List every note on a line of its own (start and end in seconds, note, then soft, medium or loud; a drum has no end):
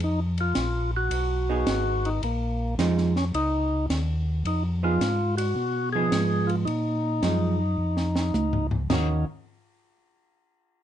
0.00 0.54 F2 medium
0.00 0.20 D#4 medium
0.00 ride soft
0.38 0.91 F4 medium
0.38 ride soft
0.55 1.09 A#1 medium
0.55 snare medium
0.55 hi-hat pedal medium
0.55 ride medium
0.97 2.09 F#4 medium
1.11 1.65 B1 medium
1.11 ride medium
1.49 2.19 B3 medium
1.49 2.19 D#4 medium
1.49 2.20 G#4 medium
1.67 2.21 G#1 medium
1.67 snare medium
1.67 hi-hat pedal soft
1.67 ride medium
2.05 2.22 D#4 medium
2.05 ride soft
2.22 2.76 A#1 medium
2.22 2.75 A#3 medium
2.22 ride soft
2.78 3.32 F2 medium
2.78 3.12 F3 medium
2.78 3.13 G#3 medium
2.78 3.13 D#4 medium
2.78 snare medium
2.78 hi-hat pedal soft
2.78 ride medium
2.98 snare soft
3.16 3.25 C#4 medium
3.16 snare soft
3.34 3.88 C#2 medium
3.34 3.86 D#4 loud
3.34 ride medium
3.89 4.43 D#2 medium
3.89 snare medium
3.89 hi-hat pedal soft
3.89 ride medium
4.45 4.99 F2 medium
4.45 4.63 D#4 medium
4.45 ride medium
4.83 4.99 F3 soft
4.83 4.99 B3 medium
4.83 4.99 D#4 medium
4.83 5.35 F4 medium
4.83 4.99 G#4 medium
5.00 5.54 G#2 medium
5.00 snare medium
5.00 hi-hat pedal medium
5.00 ride medium
5.37 5.89 F#4 loud
5.37 ride medium
5.56 6.10 B2 medium
5.93 6.64 F3 medium
5.93 6.64 B3 medium
5.93 6.65 D#4 medium
5.93 6.51 G#4 loud
5.93 6.65 G#4 medium
6.11 6.65 G#2 medium
6.11 snare medium
6.11 hi-hat pedal soft
6.11 ride medium
6.47 6.56 F4 medium
6.47 ride soft
6.65 7.21 A#2 medium
6.65 8.67 D#4 medium
6.65 ride soft
7.23 7.77 F#2 medium
7.23 7.57 F3 medium
7.23 7.58 G#3 medium
7.23 7.58 D#4 medium
7.23 snare medium
7.23 hi-hat pedal soft
7.23 ride medium
7.78 8.32 F2 medium
7.97 snare soft
8.16 snare medium
8.33 8.88 C#2 medium
8.33 hi-hat pedal soft
8.33 high tom medium
8.53 floor tom medium
8.71 floor tom medium
8.90 9.25 D#2 medium
8.90 9.24 D#3 medium
8.90 9.24 A#3 medium
8.90 9.24 C#4 medium
8.90 9.25 D#4 medium
8.90 9.25 F#4 medium
8.90 snare medium
8.90 floor tom medium
8.90 china medium